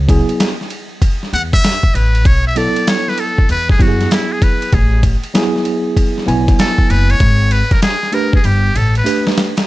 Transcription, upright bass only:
Already playing: C#2
1.33 E2
1.95 A1
2.26 B1
3.49 E2
3.80 F#2
4.73 A1
6.28 B1
6.90 F#1
7.20 G#1
8.45 G1
8.75 A1

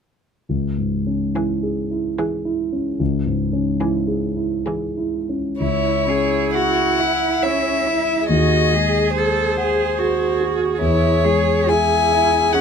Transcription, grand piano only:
0.49 C#2
0.78 G#2
1.07 C#4
1.35 E4
1.63 G#4
1.91 E4
2.18 G#4
2.45 E4
2.73 C#4
2.99 C#2
3.26 G#2
3.53 C#4
3.80 E4
4.07 G#4
4.36 E4
4.66 G#4
4.97 E4
5.29 C#4
5.60 C#2
6.07 C#4
6.54 G#4
6.99 E5
7.43 C#5
7.86 E4
8.29 D#2
8.73 G#3
9.16 G#4
9.57 F#5
9.99 G#4
10.40 F#4
10.81 E2
11.24 G#3
11.69 G#4
12.12 E5
12.54 G#4

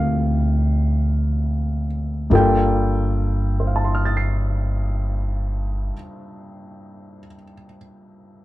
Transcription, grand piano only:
Already playing: G3 A#3 C4 F4 G4 A4 A#4 D5 F5
2.30 G2 G3 A#3 F4 A4
2.35 G5
3.60 C5
3.67 F5
3.76 A5
3.85 C6
3.95 F6
4.05 A6
4.17 C7

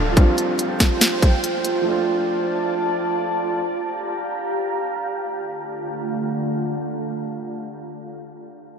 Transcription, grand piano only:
Already playing: F3 A3 D4 F4
0.12 F3 G3
0.18 C4 F4
1.82 F3 A3
1.88 D4 F4

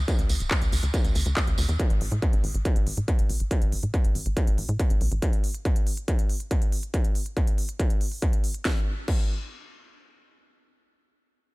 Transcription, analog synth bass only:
0.19 D2
0.29 D2
0.40 D1
0.61 D2
0.72 D2
0.83 D2
1.04 D2
1.15 D2
1.26 D2
1.47 D2
1.58 D2
1.69 E2
1.90 A1
2.01 A1
2.12 A2
2.33 A1
2.44 A1
2.54 A1
2.76 A1
2.87 A1
2.97 A2
3.19 A1
3.29 B1
3.40 A1
3.62 A1
3.72 A1
3.83 A2
4.04 A1
4.15 A1
4.26 A1
4.47 A1
4.58 A1
4.69 A2
4.90 A1
5.01 B1
5.12 A1

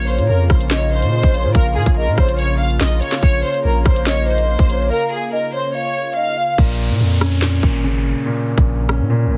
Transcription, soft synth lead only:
Already playing: C#5
0.71 D#5
1.34 C#5
1.55 F5
1.97 D#5
2.18 C#5
2.81 D#5
3.02 F5
3.23 C#5
4.07 D#5
4.69 C#5
4.90 F5
5.33 D#5
5.53 C#5
5.75 F5
6.16 D#5
6.37 F5

